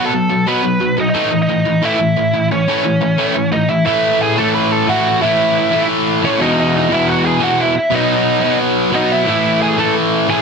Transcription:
Already playing: B2 F#3 B3
0.05 A4 A5
0.12 B2 F#3
0.29 B2 F#3
0.46 B2 F#3 B3 B4 B5
0.63 B2 F#3
0.80 B2 F#3
0.97 B2 F#3 D#4 D#5
1.09 D#4 D#5
1.14 A2 E3 A3
1.32 A2 E3
1.42 D#4 D#5
1.49 A2 E3
1.65 A2 E3
1.82 A2 E3 A3 E4 E5
1.99 A2 E3
2.17 A2 E3
2.34 A2 E3
2.51 A2 E3 C#4 C#5
2.68 A2 E3 A3
2.84 A2 E3
3.01 A2 E3
3.18 A2 E3 A3
3.34 A2 E3
3.52 A2 E3 D#4 D#5
3.69 A2 E3 E4 E5
3.85 A2 E3 A3 E4 E5
4.22 G#4 G#5
4.36 A2 E3 A3 A4 A5
4.55 B4 B5
4.72 A4 A5
4.87 A2 E3 A3 F#4 F#5
5.21 A2 E3 A3 E4 E5
5.71 A2 E3 A3
6.22 A2 E3 A3 C#4 C#5
6.38 E2 B2 E3 D#4 D#5
6.59 D#4 D#5
6.76 D#4 D#5
6.89 E2 B2 E3 E4
6.94 E5
7.08 F#4 F#5
7.25 G#4 G#5
7.39 E2 B2 E3 F#4 F#5
7.60 E4 E5
7.77 E4 E5
7.90 B2 F#3 B3
7.94 D#4 D#5
8.40 B2 F#3 B3
8.91 B2 F#3 B3 D#4 D#5
9.12 E4 E5
9.25 A2 E3 A3
9.29 E4 E5
9.61 G#4 G#5
9.76 A2 E3 A3 A4 A5
10.27 A2 E3 A3 G#4 G#5

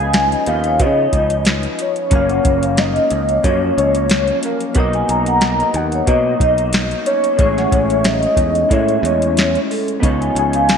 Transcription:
Already playing: C#2 C#3 F3 B3 C#4 D#4 F4 B4 D#5 G#5
0.00 F5
0.13 snare, closed hi-hat
0.32 D#5, closed hi-hat
0.46 D#2 F3 B3 D#4 F5, closed hi-hat
0.64 C#5, closed hi-hat
0.80 C#3 F3 B3 D#4 C#5 D#5, kick, closed hi-hat
1.13 C#2 F3 B3 D#4 D#5, kick, closed hi-hat
1.30 closed hi-hat
1.45 snare, closed hi-hat
1.63 closed hi-hat
1.79 C#5, closed hi-hat
1.96 closed hi-hat
2.10 F#1 F#2 F3 F#3 A#3 C#4 A#4, kick, closed hi-hat
2.15 F5
2.29 F#5, closed hi-hat
2.45 F#1, kick, closed hi-hat
2.62 F5, closed hi-hat
2.77 D#5, snare, closed hi-hat
2.96 D#5, closed hi-hat
3.10 C#2, closed hi-hat
3.29 C#5, closed hi-hat
3.44 F#2 F3 A#3 C#4 C#5, kick, closed hi-hat
3.78 C#2 C#5 D#5, closed hi-hat
3.95 closed hi-hat
4.10 C#5, snare, closed hi-hat
4.28 closed hi-hat
4.43 F#3 C#4 A#4 F5, closed hi-hat
4.60 closed hi-hat
4.74 B1 B2 F#3 A#3 B3 F#4 A#4, kick, closed hi-hat
4.78 D#4 D#5
4.93 G#5, closed hi-hat
5.09 B1 A#5, closed hi-hat
5.26 F#5, closed hi-hat
5.41 snare, closed hi-hat
5.60 D#5, closed hi-hat
5.74 D#2 F#5, closed hi-hat
5.92 C#5, closed hi-hat
6.07 B2 F#3 A#3 D#4 D#5, kick, closed hi-hat
6.11 C#5
6.40 B1 F#3 A#3 D#4 D#5, kick, closed hi-hat
6.58 closed hi-hat
6.73 snare, closed hi-hat
6.91 closed hi-hat
7.06 C#5, closed hi-hat
7.24 closed hi-hat
7.37 A1 A2 G#3 A3 C#4 E4, kick, closed hi-hat
7.41 G#4 C#5
7.58 F#5, snare, closed hi-hat
7.72 A1, kick, closed hi-hat
7.90 E5, closed hi-hat
8.04 D#5, snare, closed hi-hat
8.23 C#5, closed hi-hat
8.37 E2, kick, closed hi-hat
8.55 D#5, closed hi-hat
8.69 A2 G#3 C#4 E4 C#5, kick, closed hi-hat
8.73 E5
8.88 closed hi-hat
9.03 E2 C#5 D#5, closed hi-hat
9.22 closed hi-hat
9.37 C#5, snare, closed hi-hat
9.55 closed hi-hat
9.71 A4, open hi-hat
9.88 closed hi-hat
10.00 C#2 C#3 F3 B3 D#4 F4, kick, closed hi-hat
10.05 C#5
10.21 G#5, closed hi-hat
10.35 C#2 G#5, closed hi-hat
10.53 F5, closed hi-hat
10.69 snare, closed hi-hat

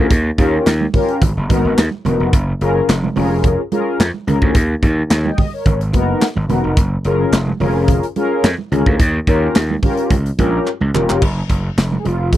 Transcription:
Already playing: C#4 F4 G#4 A#4
0.11 D#2, kick, closed hi-hat, muted conga
0.38 D#2 C#4 F4 G4 A#4, kick, closed hi-hat
0.66 D#2, snare, clap, closed hi-hat, muted conga
0.81 high conga
0.94 C#4 F4 G4 A#4, kick, open hi-hat, muted conga, high conga, low conga
1.09 closed hi-hat
1.22 G#1, kick, closed hi-hat, low conga
1.37 F#1
1.49 G#1 B3 D#4 F#4 A#4, kick, closed hi-hat, high conga
1.64 G#1
1.78 D#2, snare, clap, closed hi-hat
1.91 high conga
2.05 E1 B3 D#4 F#4 A#4, closed hi-hat, muted conga, high conga, low conga
2.20 F1
2.33 F#1, kick, closed hi-hat
2.61 F#1 C#4 F4 G#4 A#4, closed hi-hat
2.89 F1, snare, clap, closed hi-hat
3.04 high conga
3.16 F1 C#4 F4 G#4 A#4, open hi-hat, muted conga, high conga, low conga
3.44 kick, closed hi-hat, low conga
3.71 C#4 F4 G#4 A#4, closed hi-hat, muted conga, high conga
4.00 F2, snare, clap, closed hi-hat
4.14 high conga
4.27 C#2 C#4 F4 G#4 A#4, closed hi-hat, high conga, low conga
4.42 D2, kick
4.55 D#2, kick, closed hi-hat, muted conga
4.83 D#2, kick, closed hi-hat, muted conga
5.10 D#2, snare, clap, closed hi-hat
5.25 D#5 G5, high conga
5.38 D#5, kick, open hi-hat, muted conga, high conga, low conga
5.53 A#4 C#5
5.66 G#1, kick, closed hi-hat, low conga
5.81 closed hi-hat
5.93 F#1 B3 D#4 F#4 A#4, kick, closed hi-hat, high conga
6.21 snare, clap, closed hi-hat, muted conga
6.36 G#1, high conga
6.49 E1 B3 D#4 F#4 A#4, closed hi-hat, high conga, low conga
6.64 F1
6.77 F#1, kick, closed hi-hat, muted conga
7.05 F#1 C#4 F4 G#4 A#4, closed hi-hat
7.32 F1, snare, clap, closed hi-hat
7.48 high conga
7.60 F1 C#4 F4 G#4 A#4, open hi-hat, muted conga, high conga, low conga
7.88 kick, closed hi-hat, low conga
8.03 closed hi-hat
8.16 C#4 F4 G#4 A#4, closed hi-hat, high conga
8.43 F2, snare, clap, closed hi-hat, muted conga
8.58 high conga
8.71 C#2 C#4 F4 G#4 A#4, closed hi-hat, high conga, low conga
8.86 D2, kick
8.99 D#2, kick, closed hi-hat
9.27 D#2 C#4 F4 G4 A#4, kick, closed hi-hat, muted conga
9.55 D#2, snare, clap, closed hi-hat, muted conga
9.70 high conga
9.83 C#4 F4 G4 A#4, kick, open hi-hat, high conga, low conga
9.97 closed hi-hat
10.10 C#2, kick, closed hi-hat, muted conga, low conga
10.26 closed hi-hat
10.38 A#1 C#4 F4 G4 A#4, kick, closed hi-hat, muted conga, high conga
10.65 clap, muted conga
10.81 C#2, high conga
10.94 E1 C#4 F4 G4 A#4, clap, high conga, low conga
11.09 F1, clap
11.22 F#1, kick, crash, muted conga
11.49 F#1, kick, closed hi-hat, muted conga
11.77 F1, snare, clap, closed hi-hat, muted conga
11.92 high conga
11.99 G#4
12.05 F1 F4, closed hi-hat, high conga
12.33 G#4, kick, closed hi-hat, muted conga, low conga

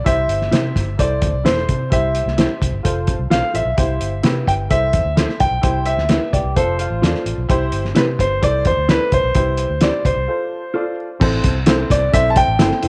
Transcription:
0.04 C2 E4 G4 C5 E5, kick, closed hi-hat
0.28 G1, closed hi-hat
0.42 snare
0.51 C3 E4 G4 C5, snare, closed hi-hat
0.76 G1, kick, snare, closed hi-hat
0.98 C2 E4 A4 C5 D5, kick, closed hi-hat
1.22 D2, kick, closed hi-hat
1.33 C2
1.44 E1 E4 A4 C5, snare, closed hi-hat
1.58 snare
1.69 C3, kick, closed hi-hat
1.90 C2 E4 G4 C5 E5, kick, closed hi-hat
2.15 closed hi-hat
2.26 C2, snare
2.37 E4 G4 C5, snare, closed hi-hat
2.61 C2, kick, closed hi-hat
2.72 G1
2.83 F1 F4 A4 C5, kick, closed hi-hat
3.07 kick, closed hi-hat
3.19 C2
3.30 B1 F4 A4 C5 F5, snare, closed hi-hat
3.54 A1 F4 A4 C5 E5, closed hi-hat
3.65 B1
3.77 C2 E4 G4 C5, kick, closed hi-hat
4.00 G1, closed hi-hat
4.23 C3 E4 G4 B4 C5, snare, closed hi-hat
4.47 G1 G5, kick, closed hi-hat
4.69 C2 E4 A4 C5 E5, kick, closed hi-hat
4.93 E2, kick, closed hi-hat
5.05 D2
5.16 E4 A4 C5, snare, closed hi-hat
5.29 snare
5.40 C2 G5, kick, closed hi-hat
5.51 B1
5.62 C2 E4 G4 C5, kick, closed hi-hat
5.86 E5, closed hi-hat
5.97 D2, snare
6.09 E4 G4 B4 C5, snare, closed hi-hat
6.33 C2 G4 D5, kick, closed hi-hat
6.44 C2
6.56 F1 F4 A4 C5, kick, closed hi-hat
6.79 F4, closed hi-hat
6.90 A1
7.02 E2 F4 A4 C5 D5, snare, closed hi-hat
7.15 snare
7.26 A1, closed hi-hat
7.38 B1
7.49 C2 E4 G4 C5, kick, closed hi-hat
7.72 G1, closed hi-hat
7.85 snare
7.95 C3 E4 G4 B4 C5, snare, closed hi-hat
8.19 G1 C5, kick, snare, closed hi-hat
8.41 C2 E4 A4 C5 D5, kick, closed hi-hat
8.65 E2 C5, kick, closed hi-hat
8.77 D2
8.88 E4 A4 B4 C5 D5, snare, closed hi-hat
9.12 C2 C5, kick, closed hi-hat
9.24 B1
9.35 C2 E4 G4 C5, kick, closed hi-hat
9.57 closed hi-hat
9.70 D2
9.81 E4 G4 C5 D5, snare, closed hi-hat
10.05 C2 C5, kick, closed hi-hat
10.16 C2
10.28 F4 A4 C5
10.74 F4 A4 C5 D5
11.20 A1 C4 E4 A4 C5, kick, crash
11.44 C2, kick, closed hi-hat
11.66 C4 E4 A4 C5, snare, closed hi-hat
11.90 C2 D5, kick, snare, closed hi-hat
12.12 B1 C4 E4 A4 C5 E5, kick, closed hi-hat
12.30 A5
12.36 G5, kick, closed hi-hat
12.48 A1
12.59 G1 C4 E4 A4 C5, snare, closed hi-hat
12.71 snare
12.83 F1 E4 A4 C5, closed hi-hat

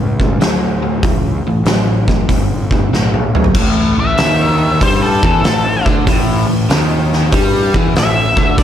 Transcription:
Already playing: C#2 A2 G3
0.20 A2 G3, kick
0.39 D2 A2 F#3, snare, open hi-hat
0.83 A2 F#3
1.03 C#2 A2 E3, kick, open hi-hat
1.43 A2, muted picked electric bass stroke
1.47 E3
1.64 A1 A2 F#3, snare, open hi-hat
2.08 A2 F#3, kick, snare
2.29 G1 A2 G3, kick, open hi-hat
2.71 A2 G3, kick
2.90 B1 A2 F#3, snare
3.14 high tom
3.34 A2 F#3, muted picked electric bass stroke, mid tom
3.44 floor tom
3.55 A1 A2, kick, crash
3.97 A1 A2 E5
4.17 D#2 D#3, snare, open hi-hat
4.81 G2 G3 C5, kick, open hi-hat
5.03 A4
5.23 E2 E3 A4, kick
5.43 A1 A2, snare, open hi-hat
5.86 D2 D3, kick
6.07 A1 A2, kick, open hi-hat
6.47 A1 A2
6.69 D#2 D#3, snare, open hi-hat
7.13 snare
7.32 G2 G3, kick, open hi-hat
7.74 E2 E3, kick
7.95 A1 A2 E5, snare, open hi-hat
8.36 D2 D3, kick
8.58 D2 D3 D5, kick, open hi-hat

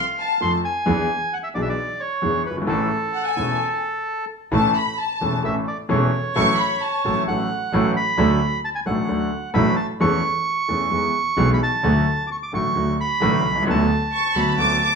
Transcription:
Already playing: F5
0.20 A5
0.41 F2 F3 A3 C4 A4 C6
0.65 G#5
0.86 E2 E3 B3 D4 G#4
1.33 F#5
1.43 E5
1.55 B1 B2 E3 B3 D4 G#4 D5
1.62 E5
1.69 D5
2.00 C#5
2.22 E2 E3 B3 D4 G#4
2.45 G1 B4
2.51 F#1
2.57 G1
2.62 G#1
2.67 A1 A2 E3 A3 C#4 A4
3.14 F#5
3.25 G#5
3.37 E1 E2 E3 A3 C#4 A4
4.52 A1 A2 E3 A3 C#4 A4 A5
4.75 B5
4.98 A5
5.21 E1 E2 E3 A3 C#4 A4
5.44 A1 A2 E3 A3 C#4 A4 E5
5.68 D5
5.89 E1 E2 E3 A3 C#4 A4 C#5
6.35 A1 A2 F#3 A3 C#4 A4 C#6
6.58 B5
6.82 A5
7.05 A1 A2 F#3 A3 C#4 A4
7.28 A1 A2 F#3 A3 C#4 A4 F#5
7.73 A1 A2 F#3 A3 C#4 A4
7.97 B5
8.18 D2 D3 F#3 A3 D4 A4
8.65 A5
8.75 G#5
8.86 A1 A2 F#3 A3 D4 A4 F#5
9.08 D2 D3 F#3 A3 D4 A4
9.54 A1 A2 F#3 A3 D4 A4 B5
9.76 A5
10.00 E2 E3 A3 C#4 A4 C#6
10.68 E2 E3 A3 C#4 A4
10.91 E2 E3 G#3 B3 G#4
11.37 B1 B2 E3 G#3 B3 G#4
11.54 B5
11.63 A5
11.84 D2 D3 F#3 A3 F#4
12.27 D6
12.32 C#6
12.43 D6
12.53 A1 A2 D3 F#3 A3 F#4 C#6
12.75 D2 D3 F#3 A3 F#4
13.01 B5
13.21 A1 A2 D3 F#3 A3 F#4
13.44 C2
13.51 B1
13.56 C2
13.62 C#2
13.67 D2 D3 F#3 B3 F#4 A5
14.12 C#6
14.35 D2 D3 F#3 B3 F#4 B5
14.58 D2 D3 F#3 B3 F#4 D6
14.81 D6

